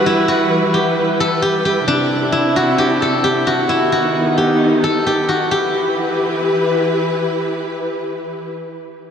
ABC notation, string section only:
X:1
M:4/4
L:1/8
Q:1/4=132
K:Em
V:1 name="String section"
[E,G,EB]8 | [C,CDE]8 | [^D,B,^D]8 | [E,EGB]8- |
[E,EGB]8 |]